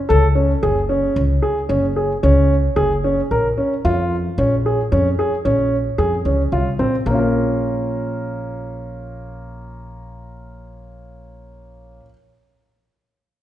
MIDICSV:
0, 0, Header, 1, 3, 480
1, 0, Start_track
1, 0, Key_signature, -5, "minor"
1, 0, Tempo, 536673
1, 2954, Time_signature, 7, 2, 24, 8
1, 12004, End_track
2, 0, Start_track
2, 0, Title_t, "Grand piano"
2, 0, Program_c, 0, 0
2, 78, Note_on_c, 0, 69, 81
2, 215, Note_off_c, 0, 69, 0
2, 315, Note_on_c, 0, 61, 59
2, 452, Note_off_c, 0, 61, 0
2, 561, Note_on_c, 0, 68, 67
2, 696, Note_off_c, 0, 68, 0
2, 798, Note_on_c, 0, 61, 63
2, 1068, Note_off_c, 0, 61, 0
2, 1274, Note_on_c, 0, 68, 68
2, 1410, Note_off_c, 0, 68, 0
2, 1512, Note_on_c, 0, 61, 66
2, 1649, Note_off_c, 0, 61, 0
2, 1756, Note_on_c, 0, 68, 56
2, 1891, Note_off_c, 0, 68, 0
2, 1996, Note_on_c, 0, 61, 73
2, 2265, Note_off_c, 0, 61, 0
2, 2471, Note_on_c, 0, 68, 71
2, 2607, Note_off_c, 0, 68, 0
2, 2721, Note_on_c, 0, 61, 64
2, 2854, Note_off_c, 0, 61, 0
2, 2962, Note_on_c, 0, 70, 67
2, 3094, Note_off_c, 0, 70, 0
2, 3199, Note_on_c, 0, 61, 58
2, 3332, Note_off_c, 0, 61, 0
2, 3441, Note_on_c, 0, 65, 76
2, 3708, Note_off_c, 0, 65, 0
2, 3922, Note_on_c, 0, 61, 69
2, 4053, Note_off_c, 0, 61, 0
2, 4166, Note_on_c, 0, 68, 61
2, 4296, Note_off_c, 0, 68, 0
2, 4399, Note_on_c, 0, 61, 71
2, 4531, Note_off_c, 0, 61, 0
2, 4640, Note_on_c, 0, 68, 63
2, 4772, Note_off_c, 0, 68, 0
2, 4874, Note_on_c, 0, 61, 67
2, 5142, Note_off_c, 0, 61, 0
2, 5351, Note_on_c, 0, 68, 64
2, 5485, Note_off_c, 0, 68, 0
2, 5597, Note_on_c, 0, 61, 54
2, 5730, Note_off_c, 0, 61, 0
2, 5837, Note_on_c, 0, 65, 67
2, 5970, Note_off_c, 0, 65, 0
2, 6076, Note_on_c, 0, 60, 65
2, 6209, Note_off_c, 0, 60, 0
2, 6320, Note_on_c, 0, 58, 56
2, 6356, Note_on_c, 0, 61, 52
2, 6392, Note_on_c, 0, 65, 52
2, 6428, Note_on_c, 0, 70, 53
2, 10733, Note_off_c, 0, 58, 0
2, 10769, Note_off_c, 0, 61, 0
2, 10805, Note_off_c, 0, 65, 0
2, 10841, Note_off_c, 0, 70, 0
2, 12004, End_track
3, 0, Start_track
3, 0, Title_t, "Upright bass"
3, 0, Program_c, 1, 32
3, 88, Note_on_c, 1, 37, 83
3, 474, Note_off_c, 1, 37, 0
3, 561, Note_on_c, 1, 30, 77
3, 948, Note_off_c, 1, 30, 0
3, 1038, Note_on_c, 1, 37, 85
3, 1233, Note_off_c, 1, 37, 0
3, 1514, Note_on_c, 1, 30, 80
3, 1903, Note_off_c, 1, 30, 0
3, 1996, Note_on_c, 1, 37, 82
3, 2383, Note_off_c, 1, 37, 0
3, 2470, Note_on_c, 1, 30, 72
3, 2859, Note_off_c, 1, 30, 0
3, 2961, Note_on_c, 1, 34, 70
3, 3151, Note_off_c, 1, 34, 0
3, 3440, Note_on_c, 1, 41, 84
3, 3823, Note_off_c, 1, 41, 0
3, 3916, Note_on_c, 1, 34, 80
3, 4300, Note_off_c, 1, 34, 0
3, 4400, Note_on_c, 1, 41, 78
3, 4589, Note_off_c, 1, 41, 0
3, 4877, Note_on_c, 1, 34, 80
3, 5261, Note_off_c, 1, 34, 0
3, 5351, Note_on_c, 1, 41, 77
3, 5544, Note_off_c, 1, 41, 0
3, 5591, Note_on_c, 1, 37, 73
3, 5806, Note_off_c, 1, 37, 0
3, 5832, Note_on_c, 1, 36, 73
3, 6047, Note_off_c, 1, 36, 0
3, 6074, Note_on_c, 1, 34, 61
3, 6289, Note_off_c, 1, 34, 0
3, 6314, Note_on_c, 1, 34, 78
3, 10727, Note_off_c, 1, 34, 0
3, 12004, End_track
0, 0, End_of_file